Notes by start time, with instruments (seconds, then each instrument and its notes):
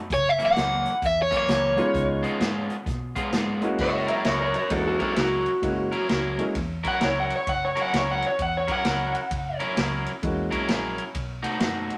Already playing: fingered electric bass F#2
0.10 fingered electric bass F#1, overdriven electric guitar C#5, kick, closed hi-hat
0.29 overdriven electric guitar E5
0.39 clean electric guitar F#2 E3 A#3 C#4, closed hi-hat
0.46 overdriven electric guitar F#5
0.55 fingered electric bass C#2, clean electric guitar F#2 E3 A#3 C#4, snare, closed hi-hat
0.85 closed hi-hat
1.02 fingered electric bass E2, kick, closed hi-hat
1.06 overdriven electric guitar E5
1.22 overdriven electric guitar C#5
1.31 clean electric guitar F#2 E3 A#3 C#4, kick, closed hi-hat
1.37 overdriven electric guitar C#5
1.47 fingered electric bass C#2, clean electric guitar F#2 E3 A#3 C#4, snare, closed hi-hat
1.76 upright piano G#3 B3 C#4 D#4 F4, closed hi-hat
1.94 fingered electric bass C#2, kick, closed hi-hat
2.23 clean electric guitar C#3 G#3 B3 F4, closed hi-hat
2.39 fingered electric bass G#2, clean electric guitar C#3 G#3 B3 F4, snare, closed hi-hat
2.70 closed hi-hat
2.86 fingered electric bass B2, kick, snare, closed hi-hat
3.16 clean electric guitar C#3 G#3 B3 F4, kick, closed hi-hat
3.32 fingered electric bass G#2, clean electric guitar C#3 G#3 B3 F4, snare, closed hi-hat
3.61 upright piano G#3 A#3 C#4 E4 F#4, closed hi-hat
3.78 fingered electric bass F#1, electric slide guitar C#5 E5, kick, crash
3.95 electric slide guitar C#5 E5
4.07 clean electric guitar F#3 C#4 E4 A#4, electric slide guitar C#5 E5, ride
4.25 fingered electric bass C#2, clean electric guitar F#3 C#4 E4 A#4, electric slide guitar A#4 C#5, snare, ride
4.41 electric slide guitar A#4 C#5
4.54 electric slide guitar A#4 C#5, ride
4.70 fingered electric bass E2, upright piano G#3 A#3 C#4 E4 F#4, electric slide guitar F#4 A4, kick, ride
4.87 electric slide guitar F#4 A4
4.99 clean electric guitar F#3 C#4 E4 A#4, electric slide guitar F#4 A4, kick, ride
5.16 fingered electric bass C#2, clean electric guitar F#3 C#4 E4 A#4, electric slide guitar F#4, snare, ride
5.46 ride
5.62 fingered electric bass F#1, upright piano G#3 A#3 C#4 E4 F#4, kick, ride
5.92 clean electric guitar F#3 C#4 E4 A#4, ride
6.08 fingered electric bass C#2, clean electric guitar F#3 C#4 E4 A#4, snare, ride
6.38 upright piano G#3 A#3 C#4 E4 G#4, ride
6.55 fingered electric bass E2, kick, snare, ride
6.83 clean electric guitar F#3 C#4 E4 A#4, kick, ride
6.88 electric slide guitar F#5
7.00 fingered electric bass C#2, clean electric guitar F#3 C#4 E4 A#4, snare, ride
7.04 electric slide guitar C#5
7.20 electric slide guitar F#5
7.30 ride
7.36 electric slide guitar C#5
7.47 fingered electric bass F#1, electric slide guitar F#5, kick, ride
7.65 electric slide guitar C#5
7.76 clean electric guitar F#3 C#4 E4 A#4, ride
7.81 electric slide guitar F#5
7.92 fingered electric bass C#2, clean electric guitar F#3 C#4 E4 A#4, snare, ride
7.96 electric slide guitar C#5
8.11 electric slide guitar F#5
8.22 ride
8.26 electric slide guitar C#5
8.39 fingered electric bass E2, electric slide guitar F#5, kick, ride
8.57 electric slide guitar C#5
8.68 clean electric guitar F#3 C#4 E4 A#4, kick, ride
8.72 electric slide guitar F#5
8.84 fingered electric bass C#2, clean electric guitar F#3 C#4 E4 A#4, snare, ride
9.15 ride
9.31 fingered electric bass F#1, kick, ride
9.60 clean electric guitar F#3 C#4 E4 A#4, ride
9.76 fingered electric bass C#2, clean electric guitar F#3 C#4 E4 A#4, snare, ride
10.06 ride
10.22 fingered electric bass E2, upright piano G#3 A#3 C#4 E4 F#4, kick, ride
10.51 clean electric guitar F#3 C#4 E4 A#4, kick, ride
10.68 fingered electric bass A#1, clean electric guitar F#3 C#4 E4 A#4, snare, ride
10.98 ride
11.14 fingered electric bass B1, kick, ride
11.43 clean electric guitar B2 A3 D#4 F#4, ride
11.60 fingered electric bass F#2, clean electric guitar B2 A3 D#4 F#4, snare, ride
11.90 ride